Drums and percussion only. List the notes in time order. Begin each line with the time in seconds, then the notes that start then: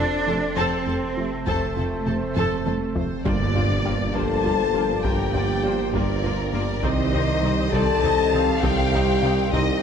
0.28 taiko mid
1.47 taiko
1.77 taiko mid
2.07 taiko mid
2.37 taiko low-mid
2.66 taiko high
2.96 taiko low
3.26 taiko
3.56 taiko low
4.15 taiko
4.45 taiko low
5.05 taiko
5.35 taiko low
5.94 taiko
6.24 taiko low
6.84 taiko
7.14 taiko low
7.73 taiko
8.04 taiko low
8.63 taiko
8.93 taiko low
9.53 taiko